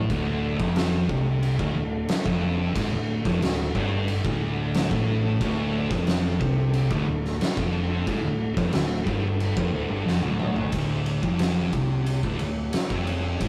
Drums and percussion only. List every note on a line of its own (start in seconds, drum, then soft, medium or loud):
0.10 kick loud
0.10 crash medium
0.60 kick loud
0.76 snare loud
0.76 crash medium
1.09 kick loud
1.43 crash medium
1.59 kick loud
2.08 snare loud
2.08 crash medium
2.26 kick loud
2.76 kick loud
2.76 crash medium
3.25 kick loud
3.25 snare soft
3.42 snare loud
3.42 crash medium
3.75 kick loud
4.08 crash medium
4.25 kick loud
4.74 snare loud
4.74 crash medium
4.91 kick loud
5.41 kick loud
5.41 crash medium
5.91 kick loud
5.91 snare soft
6.07 snare loud
6.07 crash medium
6.41 kick loud
6.73 crash medium
6.91 kick loud
7.25 snare soft
7.41 snare loud
7.41 crash medium
7.57 kick loud
8.07 kick loud
8.07 crash medium
8.57 kick loud
8.57 snare soft
8.73 snare loud
8.73 crash medium
9.07 kick loud
9.40 crash medium
9.57 kick loud
10.08 snare medium
10.23 high tom medium
10.40 mid tom medium
10.56 floor tom loud
10.72 kick loud
10.72 ride medium
11.06 ride medium
11.23 kick loud
11.39 snare loud
11.39 ride medium
11.73 kick loud
11.73 ride medium
12.06 ride medium
12.23 kick loud
12.39 ride medium
12.73 snare loud
12.73 ride medium
12.90 kick loud
13.07 ride medium
13.41 kick loud
13.41 ride medium